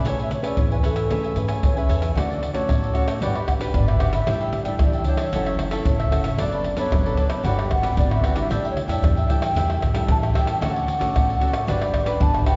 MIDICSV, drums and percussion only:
0, 0, Header, 1, 4, 480
1, 0, Start_track
1, 0, Key_signature, 2, "major"
1, 0, Tempo, 528309
1, 48, Time_signature, 4, 2, 24, 8
1, 11412, End_track
2, 0, Start_track
2, 0, Title_t, "Pandeiro"
2, 50, Note_on_c, 9, 54, 77
2, 141, Note_off_c, 9, 54, 0
2, 176, Note_on_c, 9, 54, 33
2, 267, Note_off_c, 9, 54, 0
2, 281, Note_on_c, 9, 54, 60
2, 372, Note_off_c, 9, 54, 0
2, 397, Note_on_c, 9, 54, 62
2, 488, Note_off_c, 9, 54, 0
2, 518, Note_on_c, 9, 54, 79
2, 609, Note_off_c, 9, 54, 0
2, 651, Note_on_c, 9, 54, 33
2, 742, Note_off_c, 9, 54, 0
2, 761, Note_on_c, 9, 54, 57
2, 852, Note_off_c, 9, 54, 0
2, 871, Note_on_c, 9, 54, 64
2, 962, Note_off_c, 9, 54, 0
2, 1004, Note_on_c, 9, 54, 77
2, 1095, Note_off_c, 9, 54, 0
2, 1128, Note_on_c, 9, 54, 30
2, 1219, Note_off_c, 9, 54, 0
2, 1234, Note_on_c, 9, 54, 58
2, 1325, Note_off_c, 9, 54, 0
2, 1349, Note_on_c, 9, 54, 66
2, 1440, Note_off_c, 9, 54, 0
2, 1482, Note_on_c, 9, 54, 79
2, 1573, Note_off_c, 9, 54, 0
2, 1607, Note_on_c, 9, 54, 31
2, 1698, Note_off_c, 9, 54, 0
2, 1721, Note_on_c, 9, 54, 61
2, 1812, Note_off_c, 9, 54, 0
2, 1835, Note_on_c, 9, 54, 69
2, 1926, Note_off_c, 9, 54, 0
2, 1976, Note_on_c, 9, 54, 74
2, 2067, Note_off_c, 9, 54, 0
2, 2101, Note_on_c, 9, 54, 30
2, 2191, Note_off_c, 9, 54, 0
2, 2205, Note_on_c, 9, 54, 58
2, 2296, Note_off_c, 9, 54, 0
2, 2312, Note_on_c, 9, 54, 63
2, 2403, Note_off_c, 9, 54, 0
2, 2445, Note_on_c, 9, 54, 80
2, 2536, Note_off_c, 9, 54, 0
2, 2576, Note_on_c, 9, 54, 34
2, 2667, Note_off_c, 9, 54, 0
2, 2678, Note_on_c, 9, 54, 54
2, 2769, Note_off_c, 9, 54, 0
2, 2795, Note_on_c, 9, 54, 68
2, 2886, Note_off_c, 9, 54, 0
2, 2924, Note_on_c, 9, 54, 72
2, 3015, Note_off_c, 9, 54, 0
2, 3048, Note_on_c, 9, 54, 31
2, 3139, Note_off_c, 9, 54, 0
2, 3161, Note_on_c, 9, 54, 57
2, 3252, Note_off_c, 9, 54, 0
2, 3277, Note_on_c, 9, 54, 69
2, 3368, Note_off_c, 9, 54, 0
2, 3399, Note_on_c, 9, 54, 78
2, 3490, Note_off_c, 9, 54, 0
2, 3528, Note_on_c, 9, 54, 29
2, 3619, Note_off_c, 9, 54, 0
2, 3636, Note_on_c, 9, 54, 60
2, 3727, Note_off_c, 9, 54, 0
2, 3751, Note_on_c, 9, 54, 68
2, 3842, Note_off_c, 9, 54, 0
2, 3880, Note_on_c, 9, 54, 80
2, 3971, Note_off_c, 9, 54, 0
2, 4002, Note_on_c, 9, 54, 32
2, 4093, Note_off_c, 9, 54, 0
2, 4113, Note_on_c, 9, 54, 54
2, 4203, Note_off_c, 9, 54, 0
2, 4226, Note_on_c, 9, 54, 66
2, 4317, Note_off_c, 9, 54, 0
2, 4354, Note_on_c, 9, 54, 80
2, 4445, Note_off_c, 9, 54, 0
2, 4481, Note_on_c, 9, 54, 32
2, 4572, Note_off_c, 9, 54, 0
2, 4583, Note_on_c, 9, 54, 57
2, 4674, Note_off_c, 9, 54, 0
2, 4701, Note_on_c, 9, 54, 65
2, 4792, Note_off_c, 9, 54, 0
2, 4840, Note_on_c, 9, 54, 75
2, 4931, Note_off_c, 9, 54, 0
2, 4965, Note_on_c, 9, 54, 31
2, 5056, Note_off_c, 9, 54, 0
2, 5078, Note_on_c, 9, 54, 59
2, 5169, Note_off_c, 9, 54, 0
2, 5190, Note_on_c, 9, 54, 69
2, 5281, Note_off_c, 9, 54, 0
2, 5319, Note_on_c, 9, 54, 85
2, 5409, Note_off_c, 9, 54, 0
2, 5449, Note_on_c, 9, 54, 30
2, 5540, Note_off_c, 9, 54, 0
2, 5562, Note_on_c, 9, 54, 57
2, 5653, Note_off_c, 9, 54, 0
2, 5670, Note_on_c, 9, 54, 66
2, 5761, Note_off_c, 9, 54, 0
2, 5801, Note_on_c, 9, 54, 78
2, 5892, Note_off_c, 9, 54, 0
2, 5926, Note_on_c, 9, 54, 32
2, 6016, Note_off_c, 9, 54, 0
2, 6036, Note_on_c, 9, 54, 59
2, 6127, Note_off_c, 9, 54, 0
2, 6148, Note_on_c, 9, 54, 69
2, 6239, Note_off_c, 9, 54, 0
2, 6289, Note_on_c, 9, 54, 81
2, 6379, Note_off_c, 9, 54, 0
2, 6413, Note_on_c, 9, 54, 35
2, 6504, Note_off_c, 9, 54, 0
2, 6517, Note_on_c, 9, 54, 56
2, 6608, Note_off_c, 9, 54, 0
2, 6629, Note_on_c, 9, 54, 66
2, 6720, Note_off_c, 9, 54, 0
2, 6764, Note_on_c, 9, 54, 79
2, 6855, Note_off_c, 9, 54, 0
2, 6894, Note_on_c, 9, 54, 32
2, 6985, Note_off_c, 9, 54, 0
2, 7003, Note_on_c, 9, 54, 62
2, 7094, Note_off_c, 9, 54, 0
2, 7117, Note_on_c, 9, 54, 69
2, 7208, Note_off_c, 9, 54, 0
2, 7244, Note_on_c, 9, 54, 83
2, 7335, Note_off_c, 9, 54, 0
2, 7372, Note_on_c, 9, 54, 31
2, 7463, Note_off_c, 9, 54, 0
2, 7484, Note_on_c, 9, 54, 62
2, 7575, Note_off_c, 9, 54, 0
2, 7592, Note_on_c, 9, 54, 70
2, 7683, Note_off_c, 9, 54, 0
2, 7730, Note_on_c, 9, 54, 74
2, 7820, Note_off_c, 9, 54, 0
2, 7856, Note_on_c, 9, 54, 33
2, 7947, Note_off_c, 9, 54, 0
2, 7966, Note_on_c, 9, 54, 61
2, 8057, Note_off_c, 9, 54, 0
2, 8080, Note_on_c, 9, 54, 68
2, 8171, Note_off_c, 9, 54, 0
2, 8212, Note_on_c, 9, 54, 78
2, 8303, Note_off_c, 9, 54, 0
2, 8333, Note_on_c, 9, 54, 33
2, 8424, Note_off_c, 9, 54, 0
2, 8448, Note_on_c, 9, 54, 57
2, 8539, Note_off_c, 9, 54, 0
2, 8560, Note_on_c, 9, 54, 71
2, 8651, Note_off_c, 9, 54, 0
2, 8690, Note_on_c, 9, 54, 77
2, 8781, Note_off_c, 9, 54, 0
2, 8811, Note_on_c, 9, 54, 31
2, 8902, Note_off_c, 9, 54, 0
2, 8926, Note_on_c, 9, 54, 56
2, 9017, Note_off_c, 9, 54, 0
2, 9037, Note_on_c, 9, 54, 70
2, 9127, Note_off_c, 9, 54, 0
2, 9162, Note_on_c, 9, 54, 85
2, 9253, Note_off_c, 9, 54, 0
2, 9297, Note_on_c, 9, 54, 32
2, 9388, Note_off_c, 9, 54, 0
2, 9406, Note_on_c, 9, 54, 60
2, 9497, Note_off_c, 9, 54, 0
2, 9516, Note_on_c, 9, 54, 68
2, 9606, Note_off_c, 9, 54, 0
2, 9651, Note_on_c, 9, 54, 82
2, 9742, Note_off_c, 9, 54, 0
2, 9778, Note_on_c, 9, 54, 30
2, 9868, Note_off_c, 9, 54, 0
2, 9887, Note_on_c, 9, 54, 57
2, 9978, Note_off_c, 9, 54, 0
2, 10004, Note_on_c, 9, 54, 66
2, 10094, Note_off_c, 9, 54, 0
2, 10138, Note_on_c, 9, 54, 79
2, 10229, Note_off_c, 9, 54, 0
2, 10266, Note_on_c, 9, 54, 35
2, 10356, Note_off_c, 9, 54, 0
2, 10371, Note_on_c, 9, 54, 58
2, 10461, Note_off_c, 9, 54, 0
2, 10480, Note_on_c, 9, 54, 72
2, 10571, Note_off_c, 9, 54, 0
2, 10614, Note_on_c, 9, 54, 79
2, 10705, Note_off_c, 9, 54, 0
2, 10735, Note_on_c, 9, 54, 32
2, 10826, Note_off_c, 9, 54, 0
2, 10846, Note_on_c, 9, 54, 59
2, 10937, Note_off_c, 9, 54, 0
2, 10960, Note_on_c, 9, 54, 68
2, 11051, Note_off_c, 9, 54, 0
2, 11091, Note_on_c, 9, 54, 86
2, 11182, Note_off_c, 9, 54, 0
2, 11216, Note_on_c, 9, 54, 31
2, 11307, Note_off_c, 9, 54, 0
2, 11325, Note_on_c, 9, 54, 62
2, 11412, Note_off_c, 9, 54, 0
2, 11412, End_track
3, 0, Start_track
3, 0, Title_t, "Tamborim"
3, 1976, Note_on_c, 9, 60, 77
3, 2067, Note_off_c, 9, 60, 0
3, 2445, Note_on_c, 9, 60, 76
3, 2536, Note_off_c, 9, 60, 0
3, 2795, Note_on_c, 9, 60, 76
3, 2886, Note_off_c, 9, 60, 0
3, 3048, Note_on_c, 9, 60, 72
3, 3139, Note_off_c, 9, 60, 0
3, 3161, Note_on_c, 9, 60, 80
3, 3252, Note_off_c, 9, 60, 0
3, 3528, Note_on_c, 9, 60, 74
3, 3619, Note_off_c, 9, 60, 0
3, 3636, Note_on_c, 9, 60, 83
3, 3727, Note_off_c, 9, 60, 0
3, 3880, Note_on_c, 9, 60, 78
3, 3971, Note_off_c, 9, 60, 0
3, 4354, Note_on_c, 9, 60, 79
3, 4445, Note_off_c, 9, 60, 0
3, 4701, Note_on_c, 9, 60, 83
3, 4792, Note_off_c, 9, 60, 0
3, 4965, Note_on_c, 9, 60, 73
3, 5056, Note_off_c, 9, 60, 0
3, 5078, Note_on_c, 9, 60, 76
3, 5169, Note_off_c, 9, 60, 0
3, 5449, Note_on_c, 9, 60, 75
3, 5540, Note_off_c, 9, 60, 0
3, 5562, Note_on_c, 9, 60, 83
3, 5653, Note_off_c, 9, 60, 0
3, 5801, Note_on_c, 9, 60, 77
3, 5892, Note_off_c, 9, 60, 0
3, 6289, Note_on_c, 9, 60, 86
3, 6379, Note_off_c, 9, 60, 0
3, 6629, Note_on_c, 9, 60, 79
3, 6720, Note_off_c, 9, 60, 0
3, 6894, Note_on_c, 9, 60, 78
3, 6985, Note_off_c, 9, 60, 0
3, 7003, Note_on_c, 9, 60, 80
3, 7094, Note_off_c, 9, 60, 0
3, 7372, Note_on_c, 9, 60, 77
3, 7463, Note_off_c, 9, 60, 0
3, 7484, Note_on_c, 9, 60, 82
3, 7575, Note_off_c, 9, 60, 0
3, 7730, Note_on_c, 9, 60, 76
3, 7820, Note_off_c, 9, 60, 0
3, 8212, Note_on_c, 9, 60, 81
3, 8303, Note_off_c, 9, 60, 0
3, 8560, Note_on_c, 9, 60, 83
3, 8651, Note_off_c, 9, 60, 0
3, 8811, Note_on_c, 9, 60, 74
3, 8902, Note_off_c, 9, 60, 0
3, 8926, Note_on_c, 9, 60, 79
3, 9017, Note_off_c, 9, 60, 0
3, 9297, Note_on_c, 9, 60, 77
3, 9388, Note_off_c, 9, 60, 0
3, 9406, Note_on_c, 9, 60, 85
3, 9497, Note_off_c, 9, 60, 0
3, 9651, Note_on_c, 9, 60, 74
3, 9742, Note_off_c, 9, 60, 0
3, 10138, Note_on_c, 9, 60, 81
3, 10229, Note_off_c, 9, 60, 0
3, 10480, Note_on_c, 9, 60, 83
3, 10571, Note_off_c, 9, 60, 0
3, 10735, Note_on_c, 9, 60, 77
3, 10826, Note_off_c, 9, 60, 0
3, 10846, Note_on_c, 9, 60, 85
3, 10937, Note_off_c, 9, 60, 0
3, 11216, Note_on_c, 9, 60, 77
3, 11307, Note_off_c, 9, 60, 0
3, 11325, Note_on_c, 9, 60, 81
3, 11412, Note_off_c, 9, 60, 0
3, 11412, End_track
4, 0, Start_track
4, 0, Title_t, "Drums"
4, 50, Note_on_c, 9, 82, 73
4, 50, Note_on_c, 9, 87, 57
4, 141, Note_off_c, 9, 82, 0
4, 141, Note_off_c, 9, 87, 0
4, 176, Note_on_c, 9, 82, 31
4, 267, Note_off_c, 9, 82, 0
4, 281, Note_on_c, 9, 82, 69
4, 372, Note_off_c, 9, 82, 0
4, 397, Note_on_c, 9, 82, 76
4, 488, Note_off_c, 9, 82, 0
4, 518, Note_on_c, 9, 82, 74
4, 518, Note_on_c, 9, 87, 101
4, 609, Note_off_c, 9, 82, 0
4, 609, Note_off_c, 9, 87, 0
4, 651, Note_on_c, 9, 82, 35
4, 742, Note_off_c, 9, 82, 0
4, 761, Note_on_c, 9, 82, 65
4, 852, Note_off_c, 9, 82, 0
4, 871, Note_on_c, 9, 82, 77
4, 962, Note_off_c, 9, 82, 0
4, 1004, Note_on_c, 9, 82, 76
4, 1004, Note_on_c, 9, 87, 57
4, 1095, Note_off_c, 9, 82, 0
4, 1095, Note_off_c, 9, 87, 0
4, 1128, Note_on_c, 9, 82, 31
4, 1219, Note_off_c, 9, 82, 0
4, 1234, Note_on_c, 9, 82, 65
4, 1325, Note_off_c, 9, 82, 0
4, 1349, Note_on_c, 9, 82, 81
4, 1440, Note_off_c, 9, 82, 0
4, 1482, Note_on_c, 9, 82, 78
4, 1482, Note_on_c, 9, 87, 98
4, 1573, Note_off_c, 9, 82, 0
4, 1573, Note_off_c, 9, 87, 0
4, 1607, Note_on_c, 9, 82, 30
4, 1698, Note_off_c, 9, 82, 0
4, 1835, Note_on_c, 9, 82, 81
4, 1926, Note_off_c, 9, 82, 0
4, 1976, Note_on_c, 9, 82, 78
4, 1976, Note_on_c, 9, 87, 58
4, 2067, Note_off_c, 9, 82, 0
4, 2067, Note_off_c, 9, 87, 0
4, 2101, Note_on_c, 9, 82, 31
4, 2191, Note_off_c, 9, 82, 0
4, 2312, Note_on_c, 9, 82, 76
4, 2403, Note_off_c, 9, 82, 0
4, 2445, Note_on_c, 9, 82, 78
4, 2445, Note_on_c, 9, 87, 102
4, 2536, Note_off_c, 9, 82, 0
4, 2536, Note_off_c, 9, 87, 0
4, 2576, Note_on_c, 9, 82, 32
4, 2667, Note_off_c, 9, 82, 0
4, 2678, Note_on_c, 9, 82, 65
4, 2769, Note_off_c, 9, 82, 0
4, 2795, Note_on_c, 9, 82, 77
4, 2886, Note_off_c, 9, 82, 0
4, 2924, Note_on_c, 9, 82, 78
4, 2924, Note_on_c, 9, 87, 58
4, 3015, Note_off_c, 9, 82, 0
4, 3015, Note_off_c, 9, 87, 0
4, 3048, Note_on_c, 9, 82, 32
4, 3139, Note_off_c, 9, 82, 0
4, 3161, Note_on_c, 9, 82, 66
4, 3161, Note_on_c, 9, 87, 68
4, 3252, Note_off_c, 9, 82, 0
4, 3252, Note_off_c, 9, 87, 0
4, 3277, Note_on_c, 9, 82, 81
4, 3368, Note_off_c, 9, 82, 0
4, 3399, Note_on_c, 9, 82, 80
4, 3399, Note_on_c, 9, 87, 98
4, 3490, Note_off_c, 9, 82, 0
4, 3490, Note_off_c, 9, 87, 0
4, 3528, Note_on_c, 9, 82, 30
4, 3619, Note_off_c, 9, 82, 0
4, 3636, Note_on_c, 9, 82, 70
4, 3727, Note_off_c, 9, 82, 0
4, 3751, Note_on_c, 9, 82, 83
4, 3842, Note_off_c, 9, 82, 0
4, 3880, Note_on_c, 9, 82, 73
4, 3880, Note_on_c, 9, 87, 53
4, 3971, Note_off_c, 9, 82, 0
4, 3971, Note_off_c, 9, 87, 0
4, 4002, Note_on_c, 9, 82, 31
4, 4093, Note_off_c, 9, 82, 0
4, 4226, Note_on_c, 9, 82, 79
4, 4317, Note_off_c, 9, 82, 0
4, 4354, Note_on_c, 9, 82, 76
4, 4354, Note_on_c, 9, 87, 104
4, 4445, Note_off_c, 9, 82, 0
4, 4445, Note_off_c, 9, 87, 0
4, 4481, Note_on_c, 9, 82, 33
4, 4572, Note_off_c, 9, 82, 0
4, 4583, Note_on_c, 9, 82, 67
4, 4674, Note_off_c, 9, 82, 0
4, 4701, Note_on_c, 9, 82, 81
4, 4792, Note_off_c, 9, 82, 0
4, 4840, Note_on_c, 9, 82, 75
4, 4840, Note_on_c, 9, 87, 57
4, 4931, Note_off_c, 9, 82, 0
4, 4931, Note_off_c, 9, 87, 0
4, 4965, Note_on_c, 9, 82, 31
4, 5056, Note_off_c, 9, 82, 0
4, 5190, Note_on_c, 9, 82, 78
4, 5281, Note_off_c, 9, 82, 0
4, 5319, Note_on_c, 9, 82, 83
4, 5319, Note_on_c, 9, 87, 98
4, 5409, Note_off_c, 9, 82, 0
4, 5409, Note_off_c, 9, 87, 0
4, 5449, Note_on_c, 9, 82, 31
4, 5540, Note_off_c, 9, 82, 0
4, 5562, Note_on_c, 9, 82, 69
4, 5653, Note_off_c, 9, 82, 0
4, 5670, Note_on_c, 9, 82, 79
4, 5761, Note_off_c, 9, 82, 0
4, 5801, Note_on_c, 9, 82, 78
4, 5801, Note_on_c, 9, 87, 55
4, 5892, Note_off_c, 9, 82, 0
4, 5892, Note_off_c, 9, 87, 0
4, 5926, Note_on_c, 9, 82, 31
4, 6016, Note_off_c, 9, 82, 0
4, 6148, Note_on_c, 9, 82, 81
4, 6239, Note_off_c, 9, 82, 0
4, 6289, Note_on_c, 9, 82, 83
4, 6289, Note_on_c, 9, 87, 99
4, 6379, Note_off_c, 9, 82, 0
4, 6379, Note_off_c, 9, 87, 0
4, 6413, Note_on_c, 9, 82, 36
4, 6504, Note_off_c, 9, 82, 0
4, 6629, Note_on_c, 9, 82, 83
4, 6720, Note_off_c, 9, 82, 0
4, 6764, Note_on_c, 9, 82, 76
4, 6764, Note_on_c, 9, 87, 60
4, 6855, Note_off_c, 9, 82, 0
4, 6855, Note_off_c, 9, 87, 0
4, 6894, Note_on_c, 9, 82, 30
4, 6985, Note_off_c, 9, 82, 0
4, 7003, Note_on_c, 9, 87, 66
4, 7094, Note_off_c, 9, 87, 0
4, 7117, Note_on_c, 9, 82, 79
4, 7208, Note_off_c, 9, 82, 0
4, 7244, Note_on_c, 9, 82, 83
4, 7244, Note_on_c, 9, 87, 100
4, 7335, Note_off_c, 9, 82, 0
4, 7335, Note_off_c, 9, 87, 0
4, 7372, Note_on_c, 9, 82, 31
4, 7463, Note_off_c, 9, 82, 0
4, 7592, Note_on_c, 9, 82, 78
4, 7683, Note_off_c, 9, 82, 0
4, 7730, Note_on_c, 9, 82, 80
4, 7730, Note_on_c, 9, 87, 57
4, 7820, Note_off_c, 9, 82, 0
4, 7820, Note_off_c, 9, 87, 0
4, 7856, Note_on_c, 9, 82, 34
4, 7947, Note_off_c, 9, 82, 0
4, 8080, Note_on_c, 9, 82, 77
4, 8171, Note_off_c, 9, 82, 0
4, 8212, Note_on_c, 9, 82, 78
4, 8212, Note_on_c, 9, 87, 101
4, 8303, Note_off_c, 9, 82, 0
4, 8303, Note_off_c, 9, 87, 0
4, 8333, Note_on_c, 9, 82, 34
4, 8424, Note_off_c, 9, 82, 0
4, 8448, Note_on_c, 9, 82, 67
4, 8539, Note_off_c, 9, 82, 0
4, 8560, Note_on_c, 9, 82, 82
4, 8651, Note_off_c, 9, 82, 0
4, 8690, Note_on_c, 9, 82, 83
4, 8690, Note_on_c, 9, 87, 59
4, 8781, Note_off_c, 9, 82, 0
4, 8781, Note_off_c, 9, 87, 0
4, 8811, Note_on_c, 9, 82, 31
4, 8902, Note_off_c, 9, 82, 0
4, 8926, Note_on_c, 9, 82, 68
4, 8926, Note_on_c, 9, 87, 72
4, 9017, Note_off_c, 9, 82, 0
4, 9017, Note_off_c, 9, 87, 0
4, 9037, Note_on_c, 9, 82, 81
4, 9127, Note_off_c, 9, 82, 0
4, 9162, Note_on_c, 9, 82, 80
4, 9162, Note_on_c, 9, 87, 96
4, 9253, Note_off_c, 9, 82, 0
4, 9253, Note_off_c, 9, 87, 0
4, 9297, Note_on_c, 9, 82, 30
4, 9388, Note_off_c, 9, 82, 0
4, 9516, Note_on_c, 9, 82, 82
4, 9606, Note_off_c, 9, 82, 0
4, 9651, Note_on_c, 9, 82, 74
4, 9651, Note_on_c, 9, 87, 58
4, 9742, Note_off_c, 9, 82, 0
4, 9742, Note_off_c, 9, 87, 0
4, 9778, Note_on_c, 9, 82, 35
4, 9868, Note_off_c, 9, 82, 0
4, 10004, Note_on_c, 9, 82, 76
4, 10094, Note_off_c, 9, 82, 0
4, 10138, Note_on_c, 9, 82, 78
4, 10138, Note_on_c, 9, 87, 99
4, 10229, Note_off_c, 9, 82, 0
4, 10229, Note_off_c, 9, 87, 0
4, 10266, Note_on_c, 9, 82, 36
4, 10356, Note_off_c, 9, 82, 0
4, 10480, Note_on_c, 9, 82, 79
4, 10571, Note_off_c, 9, 82, 0
4, 10614, Note_on_c, 9, 82, 81
4, 10614, Note_on_c, 9, 87, 56
4, 10705, Note_off_c, 9, 82, 0
4, 10705, Note_off_c, 9, 87, 0
4, 10735, Note_on_c, 9, 82, 33
4, 10826, Note_off_c, 9, 82, 0
4, 10846, Note_on_c, 9, 87, 70
4, 10937, Note_off_c, 9, 87, 0
4, 10960, Note_on_c, 9, 82, 83
4, 11051, Note_off_c, 9, 82, 0
4, 11091, Note_on_c, 9, 82, 81
4, 11091, Note_on_c, 9, 87, 105
4, 11182, Note_off_c, 9, 82, 0
4, 11182, Note_off_c, 9, 87, 0
4, 11216, Note_on_c, 9, 82, 30
4, 11307, Note_off_c, 9, 82, 0
4, 11325, Note_on_c, 9, 82, 70
4, 11412, Note_off_c, 9, 82, 0
4, 11412, End_track
0, 0, End_of_file